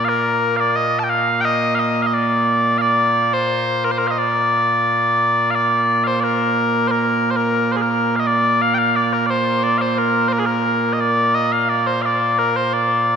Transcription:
bagpipes
Already playing: A#2 A#3
0.05 F5
0.09 A#4
0.57 D5 F5
0.76 D#5
0.99 A5
1.04 G5
1.10 F5
1.41 D#5 G5
1.75 F5
1.79 D#5
2.02 F5
2.07 D#5
2.14 D5
2.78 D5 F5
3.34 C5
3.85 A#4
3.92 C5
3.98 A#4
4.08 D#5 F5
4.18 D5
5.51 F5
5.55 D5
6.04 C5 F5
6.20 A#4 D5
6.88 A#4 C5
7.31 C5
7.36 A#4
7.72 C5
7.76 G#4
7.81 A#4
8.16 D#5 F5
8.27 D5
8.62 F5
8.74 G5
8.78 F5
8.96 D5
9.13 A#4
9.27 C5 D5
9.63 D5
9.78 C5 F5
9.98 A#4
10.28 C5
10.33 A#4
10.39 G#4
10.46 A#4
10.93 D#5
11.01 D5
11.35 D#5
11.52 F5
11.69 D5
11.87 C5
12.02 D5 F5
12.39 A#4
12.56 C5
12.73 D5

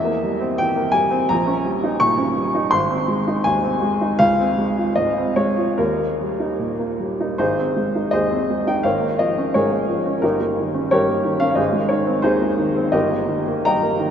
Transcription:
upright piano
Already playing: E2 E5
0.05 A#3
0.24 G3
0.40 C4
0.58 E3 G5
0.76 A#3
0.92 G3 G#5
1.11 C4
1.29 A#1 A#5
1.47 C#4
1.65 G3
1.84 D#4
2.00 A#2 C#6
2.18 C#4
2.37 G3
2.55 D#4
2.71 G#1 C6
2.90 C4
3.08 G#3
3.28 D#4
3.44 D#2 G#5
3.64 C4
3.82 G#3
4.01 D#4
4.19 C#2 F5
4.39 C4
4.58 G#3
4.78 F4
4.96 G#2 D#5
5.17 C4
5.36 G#3 C#5
5.57 F4
5.78 D#2 A#4
5.99 A#3
6.21 G3
6.40 D#4
6.59 A#2
6.79 A#3
7.00 G3
7.21 D#4
7.38 G#1 D#4 G#4 C5
7.58 C4
7.76 G#3
7.96 D#4
8.11 D#2 G#4 C5 D#5
8.31 C4
8.50 G#3
8.67 D#4 G5
8.83 G#1 A#4 C#5 F5
9.01 A#3
9.19 F3 D#5
9.38 C#4
9.54 G#2 G#4 A#4 C#5
9.72 A#3
9.89 F3
10.06 C#4
10.22 G1 D#4 G4 A#4
10.40 A#3
10.58 D#3
10.74 C#4
10.91 G2 G4 A#4 C#5
11.08 A#3
11.25 D#3
11.40 C#4 F5
11.51 F5
11.55 G#1 G#4 C5 D#5
11.73 G#3
11.89 D#3 C#5
12.06 C4
12.22 D#2 D#4 G#4 C5
12.41 G#3
12.59 D#3
12.76 C4
12.92 G1 G4 A#4 D#5
13.10 A#3
13.29 D#3
13.48 A#3
13.65 G2 D#5 G5 A#5
13.83 A#3
14.00 D#3

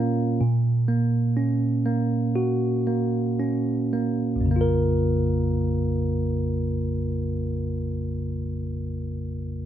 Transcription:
tine electric piano
Already playing: A#2 A#3 C#4 F4
0.41 A#2
0.88 A#3
1.37 C#4
1.86 A#3
2.36 F#4
2.87 A#3
3.40 C#4
3.93 A#3
4.36 A#1
4.41 F2
4.46 C#3
4.51 A#3
4.56 F4
4.61 A#4

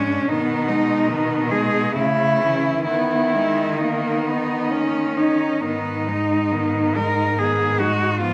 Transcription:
cello
Already playing: G#2 G#3 C#4 D4
0.28 B2 D#3 B3 D#4
0.68 G#3 D#4
1.09 D#3 B3
1.51 G#3 D#4 G#4
1.95 C#3 A3 E4
2.40 E3 C#4
2.85 D#3 B3 E4
3.34 G#3 D#4
3.78 A#3 B3 D#4
4.26 B3 D#4
4.71 A#3 C#4
5.15 C#4 D#4
5.19 D#4
5.62 G#2 D#3 B3 D#4
6.08 G#3 D#4
6.52 D#3 B3
6.96 G#3 D#4 A#4
7.38 D#3 B3 G#4
7.80 G#3 D#4 F#4
8.21 F3 B3 F4

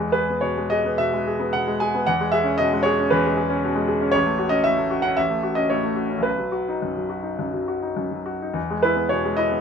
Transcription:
grand piano
Already playing: E2
0.00 G#3
0.12 G#4 B4
0.30 B3
0.41 B2 C#5
0.57 G#3
0.70 G#4 D#5
0.85 B3
0.98 B2 E5
1.13 G#3
1.27 G#4
1.40 B3
1.53 B2 F#5
1.68 G#3
1.80 G#4 G#5
1.95 B3
2.07 E2 F#5
2.20 G#3
2.32 G#4 E5
2.43 C#4
2.58 B2 D#5
2.73 G#3
2.83 G#4 C#5
2.99 C#4
3.10 E2 B4
3.26 G#3
3.37 G#4
3.50 C#4
3.65 B2
3.75 G#3
3.88 G#4
4.01 C#4
4.12 A1 C#5
4.26 A3
4.39 F#4
4.49 C#4 D#5
4.64 A2 E5
4.78 A3
4.91 F#4
5.02 C#4 F#5
5.17 A1 E5
5.30 A3
5.43 F#4
5.55 C#4 D#5
5.70 A2 C#5
5.83 A3
5.96 F#4
6.10 C#4
6.18 B1
6.23 B4
6.38 F#3
6.52 F#4
6.69 D#4
6.82 F#2
6.97 F#3
7.10 F#4
7.23 D#4
7.39 F#2
7.53 F#3
7.68 F#4
7.83 D#4
7.96 F#2
8.12 F#3
8.26 F#4
8.42 D#4
8.54 E2
8.70 G#3
8.83 E4 B4
8.96 B3
9.09 B2 C#5
9.25 G#3
9.37 E4 D#5
9.52 B3

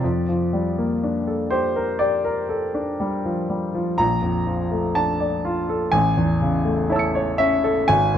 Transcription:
grand piano
Already playing: D5
0.04 F2
0.29 F3
0.53 G3
0.78 A#3
1.04 D4
1.27 A4
1.50 G4 C5
1.76 A#4
1.99 G4 D5
2.25 A#4
2.49 A4
2.74 D4
3.00 G3
3.25 F3
3.49 G3
3.74 F3
3.98 A#1 A#5
4.22 F2
4.47 F3
4.71 A3
4.95 D4 A5
5.20 D5
5.45 F4
5.69 A4
5.92 A1 G#5
6.17 E2
6.42 C#3
6.65 A3
6.89 E4 C#5 A5
6.96 E6 C#7
7.15 C#5
7.38 C#4 E5
7.64 A4
7.88 G#1 G#5
8.14 D#2

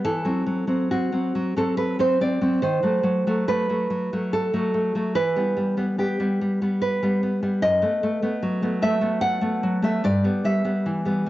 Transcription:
nylon-string guitar
0.04 E3 A4
0.25 F#3 C4
0.46 F#3
0.67 F#3 C4
0.91 C4 F#4
1.12 F#3 C4
1.35 F#3
1.56 F#3 C4 A4
1.77 B4
1.99 F#3 C4 C5
2.21 C4 D5
2.41 F#3 C4
2.62 D#3 C5
2.83 F#3 A3
3.03 F#3
3.27 F#3 A3
3.48 A3 B4
3.69 F#3 A3
3.90 F#3
4.13 F#3 A3
4.33 A4
4.54 F#3 A3
4.74 A3
4.95 F#3 A3
5.15 E3 B4
5.36 G3 B3
5.57 G3
5.77 G3 B3
5.98 B3 G4
6.20 G3 B3
6.41 G3
6.62 G3 B3
6.82 B4
7.03 G3 B3
7.23 B3
7.43 G3 B3
7.62 F#2 D#5
7.82 A3 B3
8.03 A3
8.23 A3 B3
8.43 F#3
8.62 A3 B3
8.82 A3 E5
9.01 A3 B3
9.21 F#5
9.41 A3 B3
9.63 F#3
9.82 A3 B3 E5
10.04 G2 D5
10.24 G3 B3
10.44 G3 E5
10.64 G3 B3
10.86 E3
11.05 G3 B3
11.26 G3

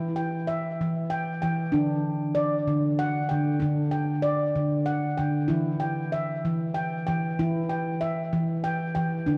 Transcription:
handpan
Already playing: E3 E4 G5
0.16 G5
0.47 E5
0.81 E3
1.10 G5
1.42 E3 G5
1.72 D3 D4
2.35 D5
2.68 D3
2.99 F#5
3.29 D3 G5
3.60 D3 D4
3.91 G5
4.22 D5
4.56 D3
4.86 F#5
5.17 D3 G5
5.48 E3 E4
5.80 G5
6.12 E5
6.45 E3
6.74 G5
7.07 E3 G5
7.39 E3 E4
7.69 G5
8.01 E5
8.33 E3
8.64 G5
8.95 E3 G5
9.26 D3 D4

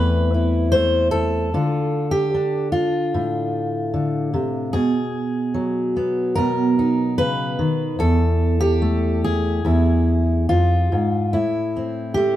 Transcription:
steel-string acoustic guitar
Already playing: E2 A3 C4 B4
0.34 E4
0.72 A3 C5
1.11 A4
1.54 D3 F4
2.11 G4
2.34 D4
2.72 F4
3.14 A2
3.94 D3
4.34 C3
4.73 B2 G#4
5.54 F#3
5.97 B3
6.35 B2 A#4
6.79 D#4
7.18 C#3 B4
7.59 D#3
7.99 E2 A4
8.60 G4
8.82 A3
9.24 G#4
9.65 E2 E4
10.49 F2 F4
10.92 G#2
11.33 A2 E4
11.76 C4
12.14 A3 G4

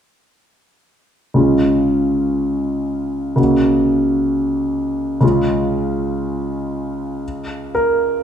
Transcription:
grand piano
1.34 C#2 G#3 C#4 F4
3.36 C#2 A#3 C#4 F#4
5.21 C#2 G#3 C#4 F4
7.75 A#4

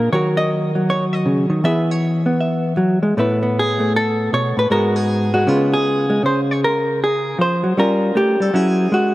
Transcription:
hollow-body jazz guitar
Already playing: D4 F4 A#4
0.12 D#3 F#3 F#4 A#4 C#5
0.37 D#5
0.75 F#3
0.90 C#5
1.13 D#5
1.26 C#3
1.50 D#3
1.64 E3 B3 E4 G#4 E5
1.91 C#5
2.26 B3
2.41 E5
2.77 F#3
3.03 G#3
3.17 A2 A3 B3 E4 B4
3.43 B3
3.59 G#4
3.80 A3
3.96 A4
4.33 B2 C#5
4.57 A2 B4
4.70 G#2 G#3 B3 F#4 A#4
4.96 G#4
5.34 G#3 F#4
5.47 C#3 G#3 B3 F4
5.74 G#4
6.10 G#3
6.23 C#3 C5
6.51 C#5
6.64 A#4
7.04 G#4
7.39 F3 C5
7.63 F#3
7.77 G3 C#4 F4 A#4
8.15 A3 G4
8.40 G3 A4
8.54 F#3 C#4 E4 G#4
8.92 G#3 F#4

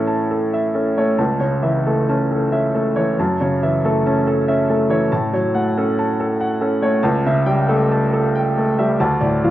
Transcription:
grand piano
Already playing: A2 E3 A3 C#4 A4 C#5 E5 A5
0.07 A5
0.31 A4
0.54 E5
0.75 C#4 A4
0.98 A3 C#5
1.18 C#2 A5
1.40 C#3 C#5
1.63 E3 E5
1.87 A3 A4
2.09 C#4 A5
2.31 A4
2.52 C#4 E5
2.74 A3 A4
2.96 E3 C#5
3.19 F#2 A5
3.41 C#3 C#5
3.63 E3 E5
3.85 A3 A4
4.06 C#4 A5
4.27 A4
4.48 C#4 E5
4.70 A3 A4
4.89 E3 C#5
5.12 A2 A5
5.33 F#3 C#5
5.54 A3 F#5
5.77 C#4 A4
5.98 A5
6.20 A4
6.40 F#5
6.61 C#4 A4
6.82 A3 C#5
7.03 C#2 A5
7.26 C#3 E5
7.46 G3 G5
7.69 A3 A4
7.92 A5
8.13 A4
8.35 G5
8.57 A3 A4
8.78 G3 E5
9.00 D2 A5
9.20 A2 D5
9.44 F3 F5

